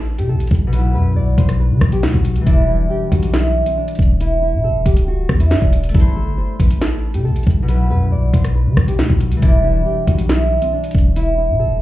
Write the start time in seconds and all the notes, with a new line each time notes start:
Already playing: A1 A3 E4 A4 C5
0.18 C3 G4, closed hi-hat
0.29 A4
0.35 A1
0.40 closed hi-hat
0.47 B1, kick, closed hi-hat
0.55 closed hi-hat
0.67 B2
0.73 F#3 B4, closed hi-hat
0.78 E4
0.95 F#2 B4
1.16 B1 D5
1.38 B1 C5, kick, closed hi-hat
1.49 cross-stick, closed hi-hat
1.60 B4
1.71 D3
1.81 B1, kick, cross-stick
1.92 G4, closed hi-hat
2.03 D2 F#4, snare
2.14 B1, kick
2.25 closed hi-hat
2.36 D2, closed hi-hat
2.41 E3
2.46 E1 D4 E4, kick, closed hi-hat
2.53 G3
2.68 E1 E4
2.90 G4
3.12 B1 F#4, kick, closed hi-hat
3.23 closed hi-hat
3.34 E4, snare
3.66 C4, closed hi-hat
3.77 D4
3.88 closed hi-hat
3.95 E1, kick, closed hi-hat
4.02 closed hi-hat
4.21 E4, closed hi-hat
4.42 E4
4.53 B2
4.64 A4
4.70 E1
4.86 D1 G4, kick, closed hi-hat
4.97 closed hi-hat
5.08 F#4
5.29 E2, kick, cross-stick
5.40 E4, closed hi-hat
5.51 G2 D4, snare
5.62 E1, kick
5.73 closed hi-hat
5.84 closed hi-hat
5.89 A3, closed hi-hat
5.94 A1 E4 A4, kick, closed hi-hat
6.00 C5, closed hi-hat
6.16 G1 A4
6.38 C5
6.60 A1 B4, kick, closed hi-hat
6.71 closed hi-hat
6.81 A4, snare
7.14 C3 G4, closed hi-hat
7.25 A4
7.30 A1
7.36 closed hi-hat
7.43 B1, kick, closed hi-hat
7.50 closed hi-hat
7.63 B2
7.68 F#3 B4, closed hi-hat
7.74 E4
7.90 F#2 B4
8.12 B1 D5
8.33 B1 C5, kick, closed hi-hat
8.44 cross-stick, closed hi-hat
8.55 B4
8.66 D3
8.77 B1, kick, cross-stick
8.88 G4, closed hi-hat
8.99 D2 F#4, snare
9.10 B1, kick
9.21 closed hi-hat
9.31 D2, closed hi-hat
9.37 E3
9.42 E1 D4 E4, kick, closed hi-hat
9.48 G3
9.64 E1 E4
9.86 G4
10.07 B1 F#4, kick, closed hi-hat
10.18 closed hi-hat
10.29 E4, snare
10.62 C4, closed hi-hat
10.73 D4
10.84 closed hi-hat
10.91 E1, kick, closed hi-hat
10.98 closed hi-hat
11.16 E4, closed hi-hat
11.38 E4
11.49 B2
11.60 A4
11.65 E1